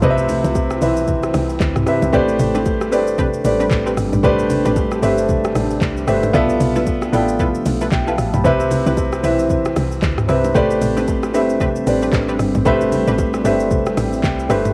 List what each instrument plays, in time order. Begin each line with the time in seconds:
0.02 log drum bass C2, grand piano C3 C4 B4 D#5, ambient pad C4 E4, kick, low conga, shaker
0.10 grand piano E5
0.18 high bongo, shaker
0.29 open hi-hat, low bongo, low conga, shaker
0.44 log drum bass C2, low bongo, shaker
0.55 kick, high bongo, shaker
0.70 cross-stick, shaker
0.81 log drum bass B1, grand piano E3 C4 B4 E5, open hi-hat, shaker
0.97 shaker
1.08 kick, low conga, shaker
1.23 cross-stick, shaker
1.34 log drum bass C2, cross-stick, open hi-hat, low bongo, shaker
1.49 shaker
1.60 log drum bass D2, kick, clap, high bongo, shaker
1.76 log drum bass C2, cross-stick, mid tom, shaker
1.86 grand piano C3 C4 B4 E5, cross-stick, open hi-hat, shaker
2.02 log drum bass C2, low bongo, shaker
2.12 log drum bass A1, ambient pad C3 G3 D4, grand piano A3 G4 B4 C5 D5, synth stab C4 D4 G4 B4, kick, low conga, shaker
2.28 high bongo, shaker
2.39 log drum bass A1, open hi-hat, low bongo, low conga, shaker
2.55 synth stab C4 D4 G4 B4, low bongo, shaker
2.66 kick, high bongo, shaker
2.81 cross-stick, shaker
2.91 log drum bass G1, grand piano A3 G4 B4 C5 D5, synth stab C4 D4 G4 B4, open hi-hat, shaker
3.07 shaker
3.18 synth stab C4 D4 G4 B4, kick, low conga, shaker
3.34 shaker
3.44 log drum bass A1, grand piano A3 G4 B4 C5 D5, open hi-hat, low bongo, shaker
3.60 synth stab C4 D4 G4 B4, shaker
3.71 log drum bass A1, kick, clap, high bongo, shaker
3.86 synth stab C4 D4 G4 B4, shaker
3.97 log drum bass G1, cross-stick, open hi-hat, shaker
4.13 log drum bass A1, mid tom, low bongo, shaker
4.23 log drum bass A1, grand piano A3 G4 B4 C5 D5, synth stab C4 D4 G4 B4, kick, low conga, shaker
4.39 high bongo, shaker
4.50 open hi-hat, low bongo, low conga, shaker
4.65 log drum bass A1, synth stab C4 D4 G4 B4, low bongo, shaker
4.76 kick, high bongo, shaker
4.92 cross-stick, shaker
5.02 log drum bass G1, grand piano A3 G4 B4 C5 E5, synth stab C4 D4 G4 B4, open hi-hat, shaker
5.18 shaker
5.29 kick, low conga, shaker
5.44 cross-stick, shaker
5.55 log drum bass A1, cross-stick, open hi-hat, low bongo, shaker
5.71 shaker
5.81 log drum bass C2, kick, clap, high bongo, shaker
5.97 shaker
6.07 log drum bass G1, grand piano A3 G4 B4 C5 E5, synth stab C4 D4 G4 B4, cross-stick, open hi-hat, shaker
6.23 mid tom, low bongo, shaker
6.33 log drum bass B1, ambient pad F3 A3 G4, grand piano B3 F4 A4 D5 E5, synth stab E4 F4 A4 B4, kick, low conga, shaker
6.49 high bongo, shaker
6.60 log drum bass B1, open hi-hat, low bongo, low conga, shaker
6.76 synth stab E4 F4 A4 B4, low bongo, shaker
6.87 kick, high bongo, shaker
7.02 cross-stick, shaker
7.12 log drum bass A1, grand piano B3 F4 A4 D5 G5, synth stab E4 F4 A4 B4, open hi-hat, shaker
7.28 shaker
7.39 synth stab E4 F4 A4 B4, kick, low conga, shaker
7.55 shaker
7.66 log drum bass B1, open hi-hat, low bongo, shaker
7.81 synth stab E4 F4 A4 B4, shaker
7.92 log drum bass B1, grand piano E5 G5, kick, clap, high bongo, shaker
8.07 synth stab E4 F4 A4 B4, grand piano F5 A5, shaker
8.18 log drum bass A1, cross-stick, open hi-hat, shaker
8.34 log drum bass B1, grand piano G5 B5, mid tom, low bongo, shaker
8.44 log drum bass C2, grand piano C3 C4 B4 E5, synth stab C4 E4 B4, ambient pad C4 E4, kick, low conga, shaker
8.60 high bongo, shaker
8.71 open hi-hat, low bongo, low conga, shaker
8.86 log drum bass C2, synth stab C4 E4 B4, low bongo, shaker
8.97 kick, high bongo, shaker
9.13 cross-stick, shaker
9.23 log drum bass B1, grand piano E3 C4 B4 E5, synth stab C4 E4 B4, open hi-hat, shaker
9.39 shaker
9.50 kick, low conga, shaker
9.65 cross-stick, shaker
9.76 log drum bass C2, cross-stick, open hi-hat, low bongo, shaker
9.92 shaker
10.02 log drum bass D2, kick, clap, high bongo, shaker
10.18 cross-stick, mid tom, shaker
10.28 log drum bass C2, grand piano C3 C4 B4 E5, synth stab C4 E4 B4, cross-stick, open hi-hat, shaker
10.44 low bongo, shaker
10.54 log drum bass A1, ambient pad G3 D4, grand piano A3 G4 B4 C5 D5, synth stab C4 D4 G4 B4, kick, low conga, shaker
10.71 high bongo, shaker
10.82 log drum bass A1, open hi-hat, low bongo, low conga, shaker
10.97 synth stab C4 D4 G4 B4, low bongo, shaker
11.08 kick, high bongo, shaker
11.23 cross-stick, shaker
11.34 log drum bass G1, grand piano A3 G4 B4 C5 E5, synth stab C4 D4 G4 B4, open hi-hat, shaker
11.50 shaker
11.60 synth stab C4 D4 G4 B4, kick, low conga, shaker
11.76 shaker
11.86 log drum bass A1, grand piano A3 G4 B4 C5 D5, open hi-hat, low bongo, shaker
12.02 synth stab C4 D4 G4 B4, shaker
12.13 log drum bass A1, kick, clap, high bongo, shaker
12.28 synth stab C4 D4 G4 B4, shaker
12.39 log drum bass G1, cross-stick, open hi-hat, shaker
12.55 log drum bass A1, mid tom, low bongo, shaker
12.65 log drum bass A1, grand piano A3 G4 B4 C5 E5, synth stab C4 D4 G4 B4, ambient pad E4, kick, low conga, shaker
12.81 high bongo, shaker
12.92 open hi-hat, low bongo, low conga, shaker
13.07 log drum bass A1, synth stab C4 D4 G4 B4, low bongo, shaker
13.18 kick, high bongo, shaker
13.34 cross-stick, shaker
13.44 log drum bass G1, grand piano A3 G4 B4 C5 E5, synth stab C4 D4 G4 B4, open hi-hat, shaker
13.60 shaker
13.71 kick, low conga, shaker
13.86 cross-stick, shaker
13.97 log drum bass A1, cross-stick, open hi-hat, low bongo, shaker
14.13 shaker
14.23 log drum bass C2, grand piano G5, kick, clap, high bongo, shaker
14.39 shaker
14.49 log drum bass G1, grand piano A3 G4 B4 C5 E5, synth stab C4 D4 G4 B4, cross-stick, open hi-hat, shaker
14.65 mid tom, low bongo, shaker